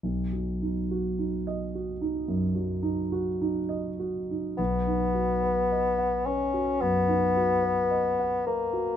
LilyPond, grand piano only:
\new Staff \with { instrumentName = "Grand piano" } { \time 4/4 \key b \major \tempo 4 = 54 b,,16 fis16 dis'16 fis'16 dis'16 dis''16 fis'16 dis'16 fis,16 fis16 dis'16 fis'16 dis'16 dis''16 fis'16 dis'16 | b,,16 dis'16 fis'16 b'16 dis''16 fis''16 b'16 fis'16 fis,16 dis'16 fis'16 b'16 dis''16 fis''16 b'16 fis'16 | }